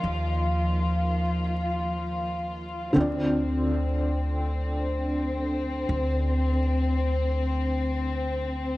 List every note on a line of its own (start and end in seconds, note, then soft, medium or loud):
0.00 2.93 D#2 medium
0.00 2.90 D#3 medium
0.00 2.97 F3 medium
0.00 2.91 A#3 medium
0.00 2.97 F4 medium
0.00 2.92 G4 medium
0.00 2.94 D5 medium
2.93 5.85 D2 medium
2.93 8.76 D3 medium
2.93 8.77 C4 medium
2.98 8.77 F4 medium
2.98 8.77 D5 medium
5.89 8.77 D2 medium